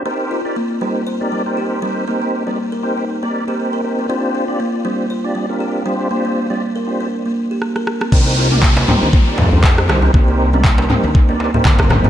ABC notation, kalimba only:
X:1
M:4/4
L:1/16
Q:"Swing 16ths" 1/4=119
K:Cm
V:1 name="Kalimba"
C z F z B, z G, z c z G, z G z G, z | B, B, z G, z B z E z B, z G z B z C | C z F z B, z G, z c z G, z G z G, z | B, B, z G, z B z D z B, z G z B z C |
C z F z B, z G, z c z G, z G z G, z | B, B, z G, z B z E z B, z G z B z C |]